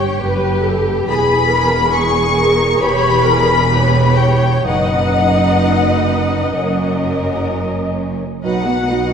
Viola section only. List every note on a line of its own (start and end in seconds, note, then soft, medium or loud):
0.00 0.21 C#5 medium
0.22 0.65 B4 medium
0.64 1.08 A4 medium
1.08 1.50 G#4 medium
1.50 1.93 A#4 medium
1.93 2.80 G#4 loud
2.80 3.26 C#5 loud
3.24 3.71 A#4 loud
3.71 4.18 B4 medium
4.19 4.67 C#5 medium
4.66 7.91 D#5 loud
8.44 8.64 F#3 medium
8.44 8.64 D#4 medium
8.67 8.89 B3 medium
8.67 8.89 F#4 medium
8.89 9.11 F#3 medium
8.89 9.11 D#4 medium